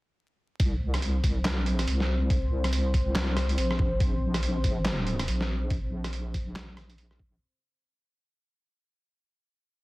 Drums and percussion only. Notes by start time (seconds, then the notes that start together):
0.60 kick, closed hi-hat
0.94 cross-stick, closed hi-hat
1.02 closed hi-hat
1.24 kick, closed hi-hat
1.45 snare, clap, closed hi-hat
1.66 closed hi-hat
1.79 cross-stick, closed hi-hat
1.87 closed hi-hat
2.00 snare
2.30 kick, closed hi-hat
2.64 cross-stick, closed hi-hat
2.73 closed hi-hat
2.94 kick, closed hi-hat
3.15 snare, clap, closed hi-hat
3.37 cross-stick, closed hi-hat
3.49 closed hi-hat
3.58 closed hi-hat
3.71 cross-stick
3.79 kick
4.00 kick, closed hi-hat
4.34 cross-stick, closed hi-hat
4.43 closed hi-hat
4.64 kick, closed hi-hat
4.85 snare, clap, closed hi-hat
5.07 closed hi-hat
5.19 cross-stick, closed hi-hat
5.28 closed hi-hat
5.41 snare
5.70 kick, closed hi-hat
6.04 cross-stick, closed hi-hat
6.13 closed hi-hat
6.34 kick, closed hi-hat
6.56 snare, clap, closed hi-hat
6.77 cross-stick, closed hi-hat
6.90 closed hi-hat
6.98 closed hi-hat
7.11 cross-stick
7.19 kick